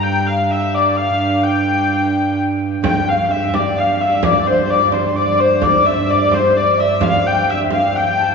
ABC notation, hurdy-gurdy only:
X:1
M:3/4
L:1/16
Q:1/4=129
K:Dm
V:1 name="Hurdy-gurdy"
g2 f2 e2 d2 f4 | g8 z4 | g2 f3/2 f/2 e2 d2 f2 e2 | d2 c2 d2 c2 d2 c2 |
d2 e2 d2 c2 d2 e2 | f2 g2 e2 f2 g4 |]